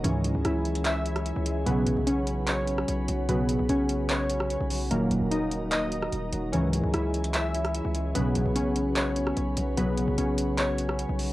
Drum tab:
HH |x-x-x-xxx-xxx-x-|x-x-x-x-x-x-x-x-|x-x-x-x-x-x-x-o-|x-x-x-x-x-x-x-x-|
CP |--------x-------|--------x-------|--------x-------|--------x-------|
SD |----r------r----|-----------r----|-----------r----|-----------r----|

HH |x-x-x-xxx-xxx-x-|x-x-x-x-x-x-x-x-|x-x-x-x-x-x-x-o-|
CP |--------x-------|--------x-------|--------x-------|
SD |----r------r----|-----------r----|-----------r----|